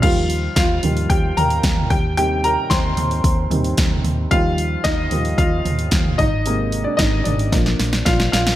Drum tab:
CC |x---------------|----------------|----------------|----------------|
HH |--o-o-ooo-ooo-o-|o-o-o-ooo-ooo-o-|o-o-o-ooo-ooo-o-|o-o-o-ooo-ooo-o-|
SD |----o-------o---|----o-------o---|----o-------o---|----o---oooooooo|
FT |------o---o--oo-|------o---o--oo-|------o---o--oo-|------o---------|
BD |o---o---o---o-o-|----o---o---o---|o---o---o---o-o-|----o---o---o---|